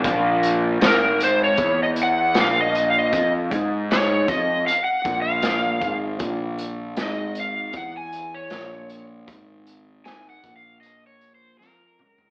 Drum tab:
HH |x-x-x-x-x-x-x-x-|x-x-x-x-x-x-x-x-|x-x-x-x-x-x-x-x-|x-x-x-x-x-x-----|
SD |----o-------o---|----o-------o---|----o-------o---|----o-------o---|
T2 |----------------|----------------|----------------|--------------o-|
FT |----------------|----------------|----------------|---------------o|
BD |o-------o-------|o-o---o---o---o-|o-------o-------|o-----o---------|